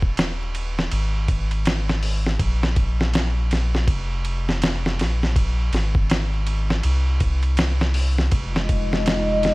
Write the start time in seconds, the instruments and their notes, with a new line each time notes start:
Already playing: sub bass D#1
0.02 kick
0.17 snare, ride
0.55 ride
0.79 snare
0.91 sub bass G#1, ride
1.28 kick, ride
1.51 ride
1.65 snare, ride
1.89 snare
2.03 open hi-hat
2.26 snare
2.39 sub bass A#1, kick, ride
2.63 snare
2.76 kick, ride
3.01 snare
3.13 snare, ride
3.51 snare, ride
3.75 snare
3.88 sub bass F1, kick, ride
4.25 ride
4.49 snare
4.62 snare, ride
4.86 snare
4.99 sub bass A#1, snare, ride
5.23 snare
5.36 kick, ride
5.72 sub bass G#1, snare, ride
5.95 kick
6.10 snare, ride
6.47 ride
6.70 snare
6.83 sub bass C2, ride
7.20 kick, ride
7.43 ride
7.57 snare, ride
7.81 snare
7.94 open hi-hat
8.18 snare
8.31 sub bass F1, analog synth pad G#3 F4 D#5, kick, ride
8.56 snare
8.69 kick, ride
8.93 snare
9.06 snare, ride
9.43 snare, ride